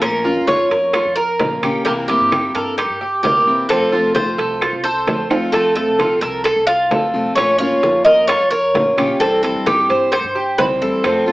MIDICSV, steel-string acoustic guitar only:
0, 0, Header, 1, 3, 480
1, 0, Start_track
1, 0, Key_signature, -5, "minor"
1, 0, Tempo, 459418
1, 20, Time_signature, 4, 2, 24, 8
1, 11827, End_track
2, 0, Start_track
2, 0, Title_t, "Steel-string acoustic guitar"
2, 0, Program_c, 0, 25
2, 23, Note_on_c, 0, 53, 68
2, 28, Note_on_c, 0, 58, 72
2, 36, Note_on_c, 0, 61, 70
2, 42, Note_on_c, 0, 65, 71
2, 244, Note_off_c, 0, 65, 0
2, 252, Note_off_c, 0, 53, 0
2, 255, Note_off_c, 0, 58, 0
2, 256, Note_on_c, 0, 65, 67
2, 259, Note_off_c, 0, 61, 0
2, 270, Note_on_c, 0, 61, 61
2, 276, Note_on_c, 0, 58, 55
2, 489, Note_off_c, 0, 65, 0
2, 496, Note_off_c, 0, 61, 0
2, 499, Note_off_c, 0, 58, 0
2, 506, Note_on_c, 0, 53, 49
2, 516, Note_on_c, 0, 58, 46
2, 518, Note_on_c, 0, 61, 48
2, 525, Note_on_c, 0, 65, 52
2, 975, Note_off_c, 0, 53, 0
2, 980, Note_off_c, 0, 58, 0
2, 981, Note_off_c, 0, 61, 0
2, 984, Note_off_c, 0, 65, 0
2, 1464, Note_on_c, 0, 53, 47
2, 1473, Note_on_c, 0, 58, 50
2, 1483, Note_on_c, 0, 61, 49
2, 1483, Note_on_c, 0, 65, 47
2, 1691, Note_off_c, 0, 65, 0
2, 1694, Note_off_c, 0, 53, 0
2, 1698, Note_off_c, 0, 58, 0
2, 1703, Note_off_c, 0, 61, 0
2, 1704, Note_on_c, 0, 65, 71
2, 1719, Note_on_c, 0, 61, 64
2, 1725, Note_on_c, 0, 58, 56
2, 1934, Note_off_c, 0, 65, 0
2, 1941, Note_off_c, 0, 61, 0
2, 1944, Note_off_c, 0, 58, 0
2, 1946, Note_on_c, 0, 48, 70
2, 1952, Note_on_c, 0, 52, 69
2, 1959, Note_on_c, 0, 60, 76
2, 1960, Note_on_c, 0, 58, 63
2, 1967, Note_on_c, 0, 64, 68
2, 2175, Note_off_c, 0, 48, 0
2, 2178, Note_off_c, 0, 52, 0
2, 2180, Note_off_c, 0, 64, 0
2, 2181, Note_off_c, 0, 60, 0
2, 2182, Note_off_c, 0, 58, 0
2, 2192, Note_on_c, 0, 64, 69
2, 2199, Note_on_c, 0, 60, 65
2, 2204, Note_on_c, 0, 58, 62
2, 2213, Note_on_c, 0, 52, 60
2, 2413, Note_off_c, 0, 52, 0
2, 2418, Note_off_c, 0, 58, 0
2, 2418, Note_off_c, 0, 64, 0
2, 2421, Note_off_c, 0, 60, 0
2, 2425, Note_on_c, 0, 52, 46
2, 2431, Note_on_c, 0, 58, 49
2, 2435, Note_on_c, 0, 60, 45
2, 2444, Note_on_c, 0, 64, 51
2, 2895, Note_off_c, 0, 52, 0
2, 2897, Note_off_c, 0, 58, 0
2, 2897, Note_off_c, 0, 60, 0
2, 2904, Note_off_c, 0, 64, 0
2, 3385, Note_on_c, 0, 52, 48
2, 3394, Note_on_c, 0, 58, 51
2, 3401, Note_on_c, 0, 60, 53
2, 3407, Note_on_c, 0, 64, 50
2, 3615, Note_off_c, 0, 52, 0
2, 3615, Note_off_c, 0, 64, 0
2, 3619, Note_off_c, 0, 58, 0
2, 3623, Note_off_c, 0, 60, 0
2, 3628, Note_on_c, 0, 64, 73
2, 3635, Note_on_c, 0, 60, 70
2, 3642, Note_on_c, 0, 58, 61
2, 3648, Note_on_c, 0, 52, 60
2, 3856, Note_off_c, 0, 64, 0
2, 3860, Note_off_c, 0, 60, 0
2, 3863, Note_off_c, 0, 58, 0
2, 3866, Note_off_c, 0, 52, 0
2, 3870, Note_on_c, 0, 48, 58
2, 3875, Note_on_c, 0, 53, 73
2, 3882, Note_on_c, 0, 57, 63
2, 3883, Note_on_c, 0, 60, 74
2, 3890, Note_on_c, 0, 65, 74
2, 4094, Note_off_c, 0, 65, 0
2, 4097, Note_off_c, 0, 48, 0
2, 4098, Note_off_c, 0, 60, 0
2, 4100, Note_off_c, 0, 53, 0
2, 4103, Note_off_c, 0, 57, 0
2, 4106, Note_on_c, 0, 65, 70
2, 4110, Note_on_c, 0, 60, 60
2, 4120, Note_on_c, 0, 57, 64
2, 4126, Note_on_c, 0, 53, 57
2, 4335, Note_off_c, 0, 65, 0
2, 4336, Note_off_c, 0, 53, 0
2, 4337, Note_off_c, 0, 60, 0
2, 4342, Note_off_c, 0, 57, 0
2, 4349, Note_on_c, 0, 53, 46
2, 4359, Note_on_c, 0, 57, 48
2, 4364, Note_on_c, 0, 60, 50
2, 4371, Note_on_c, 0, 65, 54
2, 4813, Note_off_c, 0, 53, 0
2, 4815, Note_off_c, 0, 60, 0
2, 4816, Note_off_c, 0, 57, 0
2, 4822, Note_off_c, 0, 65, 0
2, 5304, Note_on_c, 0, 53, 46
2, 5313, Note_on_c, 0, 57, 51
2, 5320, Note_on_c, 0, 60, 53
2, 5324, Note_on_c, 0, 65, 56
2, 5529, Note_off_c, 0, 65, 0
2, 5534, Note_off_c, 0, 53, 0
2, 5538, Note_off_c, 0, 60, 0
2, 5539, Note_off_c, 0, 57, 0
2, 5542, Note_on_c, 0, 65, 75
2, 5550, Note_on_c, 0, 60, 62
2, 5557, Note_on_c, 0, 57, 66
2, 5562, Note_on_c, 0, 53, 61
2, 5773, Note_off_c, 0, 65, 0
2, 5777, Note_off_c, 0, 60, 0
2, 5778, Note_off_c, 0, 53, 0
2, 5781, Note_off_c, 0, 57, 0
2, 5782, Note_on_c, 0, 48, 66
2, 5790, Note_on_c, 0, 53, 70
2, 5793, Note_on_c, 0, 57, 74
2, 5798, Note_on_c, 0, 60, 80
2, 5802, Note_on_c, 0, 65, 70
2, 6009, Note_off_c, 0, 65, 0
2, 6013, Note_off_c, 0, 48, 0
2, 6016, Note_off_c, 0, 60, 0
2, 6017, Note_off_c, 0, 53, 0
2, 6019, Note_off_c, 0, 57, 0
2, 6021, Note_on_c, 0, 65, 67
2, 6028, Note_on_c, 0, 60, 64
2, 6036, Note_on_c, 0, 57, 61
2, 6043, Note_on_c, 0, 53, 57
2, 6251, Note_off_c, 0, 53, 0
2, 6253, Note_off_c, 0, 65, 0
2, 6256, Note_off_c, 0, 60, 0
2, 6257, Note_off_c, 0, 57, 0
2, 6264, Note_on_c, 0, 53, 50
2, 6270, Note_on_c, 0, 57, 49
2, 6279, Note_on_c, 0, 60, 53
2, 6286, Note_on_c, 0, 65, 50
2, 6734, Note_off_c, 0, 53, 0
2, 6737, Note_off_c, 0, 57, 0
2, 6741, Note_off_c, 0, 60, 0
2, 6742, Note_off_c, 0, 65, 0
2, 7218, Note_on_c, 0, 53, 45
2, 7227, Note_on_c, 0, 57, 55
2, 7231, Note_on_c, 0, 60, 53
2, 7236, Note_on_c, 0, 65, 54
2, 7444, Note_off_c, 0, 65, 0
2, 7451, Note_off_c, 0, 53, 0
2, 7454, Note_off_c, 0, 60, 0
2, 7455, Note_off_c, 0, 57, 0
2, 7456, Note_on_c, 0, 65, 81
2, 7467, Note_on_c, 0, 60, 67
2, 7474, Note_on_c, 0, 57, 64
2, 7481, Note_on_c, 0, 53, 62
2, 7689, Note_off_c, 0, 53, 0
2, 7690, Note_off_c, 0, 65, 0
2, 7695, Note_off_c, 0, 60, 0
2, 7699, Note_off_c, 0, 57, 0
2, 7701, Note_on_c, 0, 53, 65
2, 7708, Note_on_c, 0, 58, 70
2, 7716, Note_on_c, 0, 61, 68
2, 7719, Note_on_c, 0, 65, 82
2, 7922, Note_off_c, 0, 65, 0
2, 7932, Note_off_c, 0, 53, 0
2, 7935, Note_off_c, 0, 58, 0
2, 7935, Note_on_c, 0, 65, 67
2, 7937, Note_off_c, 0, 61, 0
2, 7949, Note_on_c, 0, 61, 68
2, 7956, Note_on_c, 0, 58, 57
2, 8168, Note_off_c, 0, 58, 0
2, 8169, Note_off_c, 0, 65, 0
2, 8174, Note_on_c, 0, 53, 46
2, 8176, Note_off_c, 0, 61, 0
2, 8181, Note_on_c, 0, 58, 54
2, 8189, Note_on_c, 0, 61, 48
2, 8192, Note_on_c, 0, 65, 52
2, 8644, Note_off_c, 0, 53, 0
2, 8652, Note_off_c, 0, 58, 0
2, 8654, Note_off_c, 0, 61, 0
2, 8655, Note_off_c, 0, 65, 0
2, 9137, Note_on_c, 0, 53, 46
2, 9143, Note_on_c, 0, 58, 54
2, 9151, Note_on_c, 0, 61, 50
2, 9157, Note_on_c, 0, 65, 55
2, 9363, Note_off_c, 0, 65, 0
2, 9369, Note_off_c, 0, 53, 0
2, 9372, Note_off_c, 0, 61, 0
2, 9373, Note_off_c, 0, 58, 0
2, 9376, Note_on_c, 0, 65, 70
2, 9384, Note_on_c, 0, 61, 74
2, 9393, Note_on_c, 0, 58, 64
2, 9609, Note_off_c, 0, 65, 0
2, 9612, Note_on_c, 0, 48, 68
2, 9613, Note_off_c, 0, 61, 0
2, 9618, Note_off_c, 0, 58, 0
2, 9619, Note_on_c, 0, 52, 80
2, 9626, Note_on_c, 0, 55, 68
2, 9628, Note_on_c, 0, 60, 74
2, 9635, Note_on_c, 0, 64, 74
2, 9838, Note_off_c, 0, 64, 0
2, 9847, Note_off_c, 0, 48, 0
2, 9848, Note_off_c, 0, 60, 0
2, 9850, Note_off_c, 0, 52, 0
2, 9850, Note_on_c, 0, 64, 67
2, 9854, Note_off_c, 0, 55, 0
2, 9860, Note_on_c, 0, 60, 65
2, 9868, Note_on_c, 0, 55, 59
2, 9875, Note_on_c, 0, 52, 59
2, 10082, Note_off_c, 0, 52, 0
2, 10086, Note_off_c, 0, 64, 0
2, 10091, Note_off_c, 0, 55, 0
2, 10091, Note_off_c, 0, 60, 0
2, 10095, Note_on_c, 0, 52, 48
2, 10103, Note_on_c, 0, 55, 47
2, 10111, Note_on_c, 0, 60, 55
2, 10116, Note_on_c, 0, 64, 55
2, 10568, Note_off_c, 0, 52, 0
2, 10572, Note_off_c, 0, 55, 0
2, 10575, Note_off_c, 0, 64, 0
2, 10576, Note_off_c, 0, 60, 0
2, 11055, Note_on_c, 0, 52, 53
2, 11067, Note_on_c, 0, 55, 52
2, 11073, Note_on_c, 0, 60, 57
2, 11078, Note_on_c, 0, 64, 55
2, 11285, Note_off_c, 0, 64, 0
2, 11288, Note_off_c, 0, 52, 0
2, 11289, Note_off_c, 0, 60, 0
2, 11294, Note_off_c, 0, 55, 0
2, 11298, Note_on_c, 0, 64, 69
2, 11301, Note_on_c, 0, 60, 71
2, 11312, Note_on_c, 0, 55, 68
2, 11315, Note_on_c, 0, 52, 52
2, 11529, Note_off_c, 0, 64, 0
2, 11529, Note_on_c, 0, 48, 65
2, 11531, Note_off_c, 0, 60, 0
2, 11532, Note_off_c, 0, 52, 0
2, 11536, Note_off_c, 0, 55, 0
2, 11536, Note_on_c, 0, 53, 61
2, 11541, Note_on_c, 0, 57, 64
2, 11550, Note_on_c, 0, 60, 84
2, 11554, Note_on_c, 0, 65, 76
2, 11754, Note_off_c, 0, 65, 0
2, 11764, Note_off_c, 0, 60, 0
2, 11765, Note_off_c, 0, 48, 0
2, 11766, Note_on_c, 0, 65, 72
2, 11768, Note_off_c, 0, 53, 0
2, 11770, Note_off_c, 0, 57, 0
2, 11776, Note_on_c, 0, 60, 61
2, 11782, Note_on_c, 0, 57, 60
2, 11787, Note_on_c, 0, 53, 55
2, 11827, Note_off_c, 0, 53, 0
2, 11827, Note_off_c, 0, 57, 0
2, 11827, Note_off_c, 0, 60, 0
2, 11827, Note_off_c, 0, 65, 0
2, 11827, End_track
3, 0, Start_track
3, 0, Title_t, "Muted steel-string acoustic guitar strokes"
3, 986, Note_on_c, 9, 29, 54
3, 1090, Note_off_c, 9, 29, 0
3, 2906, Note_on_c, 9, 29, 51
3, 3011, Note_off_c, 9, 29, 0
3, 4822, Note_on_c, 9, 29, 56
3, 4926, Note_off_c, 9, 29, 0
3, 6741, Note_on_c, 9, 29, 53
3, 6845, Note_off_c, 9, 29, 0
3, 8657, Note_on_c, 9, 29, 56
3, 8761, Note_off_c, 9, 29, 0
3, 10578, Note_on_c, 9, 29, 52
3, 10683, Note_off_c, 9, 29, 0
3, 11827, End_track
0, 0, End_of_file